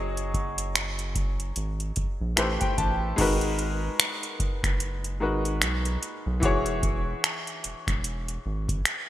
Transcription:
Already playing: analog synth bass F#1, grand piano F#3 F#4 G#4 C#5 D#5
0.17 closed hi-hat
0.34 kick, closed hi-hat
0.58 closed hi-hat
0.76 finger snap, closed hi-hat
0.99 closed hi-hat
1.15 kick, closed hi-hat
1.40 closed hi-hat
1.56 analog synth bass G#1, closed hi-hat
1.80 closed hi-hat
1.96 analog synth bass A#1, kick, closed hi-hat
2.21 analog synth bass A#1
2.36 analog synth bass A1, grand piano A3 E4 G4 B4 C5 E5, finger snap, closed hi-hat
2.61 grand piano G5, kick, closed hi-hat
2.78 analog synth bass A1, grand piano A5, kick, closed hi-hat
3.16 analog synth bass G#1, grand piano G#3 D#4 F#4 A#4, kick, closed hi-hat, crash
3.21 grand piano B4
3.41 closed hi-hat
3.59 closed hi-hat
4.00 finger snap, closed hi-hat
4.23 closed hi-hat
4.40 analog synth bass F#1, kick, closed hi-hat
4.63 analog synth bass F#1, finger snap, kick, closed hi-hat
4.80 closed hi-hat
5.04 closed hi-hat
5.20 analog synth bass G#1, grand piano G#3 D#4 F#4 A#4 B4
5.45 closed hi-hat
5.62 analog synth bass B1, finger snap, closed hi-hat
5.85 closed hi-hat
6.03 closed hi-hat
6.26 analog synth bass B1
6.40 analog synth bass E1, grand piano E3 E4 F#4, kick, closed hi-hat
6.44 grand piano G#4 C#5
6.66 closed hi-hat
6.83 kick, closed hi-hat
7.24 finger snap, closed hi-hat
7.47 closed hi-hat
7.64 analog synth bass E1, closed hi-hat
7.87 analog synth bass E1, finger snap, kick, closed hi-hat
8.04 closed hi-hat
8.28 closed hi-hat
8.46 analog synth bass G#1
8.69 kick, closed hi-hat
8.85 finger snap, closed hi-hat

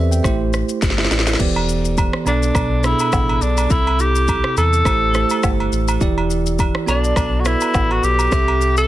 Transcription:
Already playing: sub bass E2, tine electric piano C4 G4 A4 B4 C5 D5 E5
0.11 tine electric piano E5 G5, shaker
0.23 sub bass A1, tine electric piano A3 E4 G4 C5, kick, cross-stick, shaker
0.53 cross-stick, shaker
0.69 shaker
0.82 sub bass G1, kick, snare, shaker
0.90 snare
0.98 tine electric piano C5 E5, snare
1.05 snare
1.11 sub bass A1, tine electric piano B4 D5, snare, shaker
1.19 snare
1.27 tine electric piano A4 C5, snare, shaker
1.33 snare
1.39 sub bass E1, tine electric piano E3 B3 G4 D5, kick, crash, shaker
1.56 high agogo
1.69 shaker
1.85 shaker
1.97 kick, high agogo, shaker
2.13 cross-stick
2.25 sub bass B1, tine electric piano B2 B3 D4 A4, tenor saxophone D4, high agogo, shaker
2.43 shaker
2.55 sub bass B1, kick, cross-stick, high agogo, shaker
2.82 tine electric piano B2 B3 D4 G#4, tenor saxophone E4, cross-stick, shaker
2.91 tine electric piano A4
2.99 high agogo, shaker
3.13 sub bass A1, kick, cross-stick, low woodblock, shaker
3.29 high agogo
3.42 sub bass B1, tenor saxophone D4, shaker
3.57 high agogo, shaker
3.69 sub bass C2, tine electric piano C3 C4 E4 A4, tenor saxophone E4, kick, shaker
3.87 high agogo
4.00 tenor saxophone G4, shaker
4.16 shaker
4.28 kick, high agogo, shaker
4.44 cross-stick
4.57 sub bass E2, tenor saxophone A4, high agogo, shaker
4.73 shaker
4.85 sub bass A1, tine electric piano A3 E4 G4 C5, kick, cross-stick, high agogo, shaker
5.13 tine electric piano A3 E4 G4 C5, cross-stick, shaker
5.30 high agogo, shaker
5.43 sub bass G1, kick, cross-stick, low woodblock, shaker
5.60 high agogo
5.72 sub bass A1, shaker
5.88 high agogo, shaker
6.00 sub bass E1, tine electric piano E3 E4 G4 D5, kick, shaker
6.18 high agogo
6.30 shaker
6.46 shaker
6.59 kick, high agogo, shaker
6.75 cross-stick
6.86 sub bass B1, tine electric piano B3 F#4 A4 D5, tenor saxophone D4, high agogo, shaker
7.04 shaker
7.16 sub bass B1, kick, cross-stick, high agogo, shaker
7.40 tenor saxophone F#4
7.44 tine electric piano B3 F#4 A4 B4, tenor saxophone E4, cross-stick, shaker
7.61 high agogo, shaker
7.74 sub bass A1, kick, cross-stick, low woodblock, shaker
7.91 tenor saxophone F#4, high agogo
8.03 sub bass B1, tenor saxophone G4, shaker
8.19 high agogo, shaker
8.31 sub bass C2, tine electric piano C4 G4 A4 E5, kick, cross-stick, shaker
8.48 high agogo
8.61 shaker
8.77 tenor saxophone A4, shaker

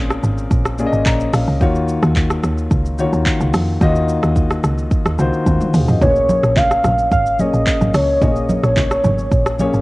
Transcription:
Already playing: log drum bass A#1, grand piano A#2 A#3 C4 C#4 G#4 A#4 C5
0.10 cross-stick, shaker
0.23 log drum bass G#1, shaker
0.38 shaker
0.51 log drum bass A#1, kick, shaker
0.65 cross-stick, shaker
0.78 grand piano A#2 A#3 C#4 G#4 D5, shaker
0.86 grand piano D#5
0.93 log drum bass G#1, shaker
1.06 log drum bass A#1, grand piano A#5, kick, clap, shaker
1.20 shaker
1.34 log drum bass A#1, grand piano F5, cross-stick, open hi-hat, shaker
1.48 log drum bass C#2
1.61 log drum bass D#2, grand piano D#3 A#3 F4 F#4 C#5, kick, shaker
1.75 shaker
1.89 shaker
2.03 log drum bass D#2, cross-stick, shaker
2.16 kick, clap, shaker
2.30 cross-stick, shaker
2.44 log drum bass D#2, cross-stick, shaker
2.58 shaker
2.71 log drum bass C#2, kick, shaker
2.86 shaker
2.99 grand piano D#3 A#3 F4 F#4 C#5, shaker
3.13 log drum bass D#2, shaker
3.26 kick, clap, shaker
3.41 log drum bass C#2, shaker
3.54 log drum bass F2, cross-stick, open hi-hat, shaker
3.81 log drum bass D#2, grand piano D#3 A#3 F4 F#4 D#5, kick, shaker
3.96 shaker
4.09 shaker
4.23 log drum bass D#2, cross-stick, shaker
4.36 kick, shaker
4.51 cross-stick, shaker
4.64 log drum bass C#2, cross-stick, shaker
4.78 shaker
4.91 kick, shaker
5.06 log drum bass D#2, cross-stick, shaker
5.19 log drum bass C#2, grand piano D#3 A#3 F4 F#4 C5, shaker
5.33 shaker
5.46 log drum bass D#2, grand piano A#4, kick, high tom, shaker
5.61 mid tom, shaker
5.74 log drum bass D#2, grand piano G#4 F5, mid tom, open hi-hat, shaker
5.88 log drum bass F2, grand piano F#4 D#5, floor tom, shaker
6.01 log drum bass A#1, grand piano A#2 A#3 C#4 G#4 B4, soft synth lead C#5, kick, low conga, shaker
6.09 grand piano C#5
6.16 shaker
6.29 high conga, shaker
6.43 log drum bass A#1, cross-stick, shaker
6.56 soft synth lead F5, kick, clap, low conga, shaker
6.71 cross-stick, shaker
6.84 log drum bass A#1, cross-stick, high conga, low conga, shaker
6.98 shaker
7.11 log drum bass G#1, soft synth lead F5, kick, shaker
7.26 shaker
7.39 grand piano A#2 A#3 C#4 G#4 C#5, soft synth lead D#5, high conga, shaker
7.53 log drum bass A#1, shaker
7.66 kick, clap, shaker
7.81 log drum bass G#1, high conga, shaker
7.94 log drum bass C#2, soft synth lead C#5, cross-stick, open hi-hat, shaker
8.22 log drum bass A#1, grand piano A#2 A#3 C#4 G#4 C#5, soft synth lead D#5, kick, low conga, shaker
8.36 shaker
8.49 high conga, shaker
8.63 log drum bass A#1, soft synth lead C#5, cross-stick, shaker
8.76 kick, clap, low conga, shaker
8.91 cross-stick, shaker
9.04 log drum bass G#1, high conga, low conga, shaker
9.18 shaker
9.32 log drum bass A#1, kick, shaker
9.46 cross-stick, shaker
9.59 grand piano A#2 A#3 C#4 G#4 C#5, high conga, shaker
9.74 log drum bass G#1, shaker

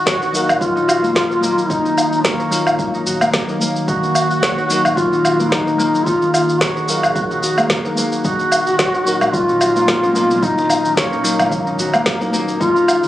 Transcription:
Already playing: ambient pad D#3 A#3, harp D#4, duduk F#4
0.06 sub bass A#1, harp C#5, kick, snare, shaker
0.21 harp D#4, shaker
0.32 tine electric piano F#3 A#3 D#4 A#4 F5, shaker
0.49 sub bass A#1, low woodblock, shaker
0.60 duduk F4, kick, shaker
0.76 harp D#4, shaker
0.82 ambient pad F#3
0.88 harp F#4, low woodblock, shaker
1.03 harp A#3, shaker
1.15 harp A#3, kick, snare, shaker
1.31 harp D#4, shaker
1.42 tine electric piano F#3 A#3 D#4 F4 A#4, harp A#3, shaker
1.58 shaker
1.69 sub bass D#1, duduk D#4, harp D#4, kick, shaker
1.85 harp D#4, shaker
1.98 low woodblock, shaker
2.13 shaker
2.23 sub bass A#1, duduk A#3, harp C#5, kick, snare, shaker
2.40 harp D#4, shaker
2.51 tine electric piano F#3 A#3 D#4 F4 A#4, shaker
2.67 sub bass A#1, low woodblock, shaker
2.79 sub bass G#1, kick, shaker
2.94 harp D#4, shaker
3.06 sub bass A#1, harp F#4, shaker
3.21 harp A#3, low woodblock, shaker
3.33 sub bass D#1, harp A#3, kick, snare, shaker
3.47 tine electric piano F#3 A#3 D#4 A#4 F5, harp D#4, shaker
3.61 harp A#3, shaker
3.76 shaker
3.88 sub bass D#1, harp D#4, duduk F#4, kick, shaker
4.03 harp D#4, shaker
4.15 low woodblock, shaker
4.31 shaker
4.43 sub bass A#1, harp C#5, kick, snare, shaker
4.58 harp D#4, shaker
4.68 tine electric piano F#3 A#3 D#4 F5, shaker
4.73 tine electric piano A#4
4.85 sub bass A#1, low woodblock, shaker
4.97 duduk F4, kick, shaker
5.12 harp D#4, shaker
5.25 harp F#4, low woodblock, shaker
5.39 harp A#3, shaker
5.48 duduk D#4, ambient pad G#4
5.52 harp A#3, kick, snare, shaker
5.67 harp D#4, shaker
5.78 tine electric piano F#3 A#3 D#4 F4 A#4, harp A#3, shaker
5.95 shaker
6.06 sub bass D#1, harp D#4, duduk F4, kick, shaker
6.21 harp D#4, shaker
6.33 duduk F4, low woodblock, shaker
6.49 shaker
6.61 sub bass A#1, duduk F#4, harp C#5, kick, snare, shaker
6.76 harp D#4, shaker
6.88 tine electric piano F#3 A#3 D#4 A#4 F5, shaker
7.03 sub bass A#1, low woodblock, shaker
7.16 kick, shaker
7.31 harp D#4, shaker
7.43 harp F#4, shaker
7.58 harp A#3, low woodblock, shaker
7.70 sub bass F#1, harp A#3, kick, snare, shaker
7.85 tine electric piano F#3 A#3 D#4 A#4 F5, harp D#4, shaker
7.97 harp A#3, shaker
8.12 shaker
8.24 sub bass D#1, ambient pad A#2, harp D#4, duduk F#4, kick, shaker
8.39 harp D#4, shaker
8.51 ambient pad F#3, low woodblock, shaker
8.64 ambient pad D#4, high conga, shaker
8.73 ambient pad C#4
8.79 sub bass A#1, harp C#5, kick, snare, shaker
8.94 harp D#4, shaker
9.04 tine electric piano F#3 A#3 D#4 A#4, shaker
9.21 sub bass A#1, low conga, low woodblock, shaker
9.34 duduk F4, kick, shaker
9.48 harp D#4, high conga, shaker
9.61 harp F#4, low woodblock, shaker
9.76 harp A#3, shaker
9.88 harp A#3, kick, snare, shaker
10.03 harp D#4, low conga, shaker
10.15 tine electric piano F#3 A#3 B3 D#4 A#4, harp A#3, shaker
10.31 muted conga, low conga, shaker
10.43 sub bass D#1, duduk D#4, harp D#4, kick, shaker
10.58 harp D#4, muted conga, shaker
10.69 muted conga, low woodblock, shaker
10.85 high conga, shaker
10.97 sub bass A#1, duduk A#3, harp C#5, kick, snare, shaker
11.12 harp D#4, shaker
11.23 tine electric piano F#3 A#3 D#4 A#4, shaker
11.39 sub bass A#1, muted conga, low conga, low woodblock, shaker
11.52 sub bass G#1, kick, shaker
11.67 harp D#4, shaker
11.79 sub bass A#1, harp F#4, high conga, shaker
11.94 harp A#3, low woodblock, shaker
12.06 sub bass D#1, harp A#3, kick, snare, shaker
12.20 tine electric piano F#3 A#3 D#4 A#4, harp D#4, shaker
12.33 harp A#3, muted conga, high conga, shaker
12.48 shaker
12.60 sub bass D#1, ambient pad C#3, harp D#4, duduk F4, kick, shaker
12.75 harp D#4, shaker
12.88 ambient pad G#3, low woodblock, shaker
13.03 high conga, shaker

